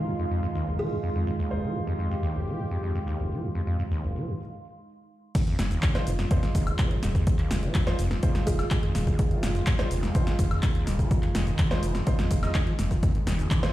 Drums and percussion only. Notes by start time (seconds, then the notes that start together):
5.35 kick, closed hi-hat, crash, cabasa
5.47 closed hi-hat
5.59 snare, open hi-hat, cabasa
5.71 closed hi-hat, cabasa
5.83 kick, clap, closed hi-hat, cabasa
5.95 snare, closed hi-hat, cabasa
6.07 open hi-hat, cabasa
6.19 snare, closed hi-hat, cabasa
6.31 kick, closed hi-hat, cabasa
6.43 snare, closed hi-hat, cabasa
6.55 kick, open hi-hat, cabasa
6.67 closed hi-hat, cabasa, high woodblock
6.79 kick, clap, closed hi-hat, cabasa
6.91 closed hi-hat
7.03 snare, open hi-hat, cabasa
7.15 kick, closed hi-hat, cabasa
7.27 kick, closed hi-hat, cabasa
7.39 clap, closed hi-hat
7.51 snare, open hi-hat, cabasa
7.63 closed hi-hat, cabasa
7.74 kick, clap, closed hi-hat, cabasa
7.87 snare, closed hi-hat, cabasa
7.99 open hi-hat, cabasa
8.11 snare, closed hi-hat, cabasa
8.23 kick, closed hi-hat, cabasa
8.35 snare, closed hi-hat, cabasa
8.47 kick, open hi-hat, cabasa
8.59 snare, closed hi-hat, cabasa, high woodblock
8.71 kick, clap, closed hi-hat, cabasa
8.83 closed hi-hat
8.95 snare, open hi-hat, cabasa
9.07 kick, closed hi-hat, cabasa
9.19 kick, closed hi-hat, cabasa
9.31 closed hi-hat
9.43 snare, open hi-hat, cabasa
9.55 closed hi-hat, cabasa
9.67 kick, clap, closed hi-hat, cabasa
9.79 snare, closed hi-hat, cabasa
9.91 open hi-hat, cabasa
10.03 snare, closed hi-hat, cabasa
10.15 kick, closed hi-hat, cabasa
10.27 snare, closed hi-hat, cabasa
10.39 kick, open hi-hat, cabasa
10.51 closed hi-hat, cabasa, high woodblock
10.63 kick, clap, closed hi-hat, cabasa
10.75 closed hi-hat
10.87 snare, open hi-hat, cabasa
10.99 kick, closed hi-hat, cabasa
11.11 kick, closed hi-hat, cabasa
11.23 clap, closed hi-hat
11.35 snare, open hi-hat, cabasa
11.47 closed hi-hat, cabasa
11.58 kick, clap, closed hi-hat, cabasa
11.71 snare, closed hi-hat, cabasa
11.83 open hi-hat, cabasa
11.95 snare, closed hi-hat, cabasa
12.07 kick, closed hi-hat, cabasa
12.19 snare, closed hi-hat, cabasa
12.31 kick, open hi-hat, cabasa
12.43 snare, closed hi-hat, cabasa, high woodblock
12.55 kick, clap, closed hi-hat, cabasa
12.67 closed hi-hat
12.79 snare, open hi-hat, cabasa
12.91 kick, closed hi-hat, cabasa
13.03 kick, closed hi-hat, cabasa
13.15 closed hi-hat
13.27 snare, open hi-hat, cabasa
13.39 closed hi-hat, cabasa
13.51 kick, clap, closed hi-hat, cabasa
13.63 snare, closed hi-hat, cabasa